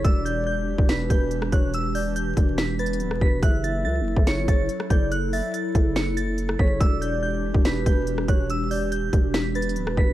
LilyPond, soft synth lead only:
\new Staff \with { instrumentName = "Soft synth lead" } { \time 4/4 \key fis \phrygian \tempo 4 = 142 d''2 b'4. cis''8 | r8 d''8 r4. b'4. | e''2 cis''4. d''8 | r8 e''8 r2 r8 cis''8 |
d''2 b'4. cis''8 | r8 d''8 r4. b'4. | }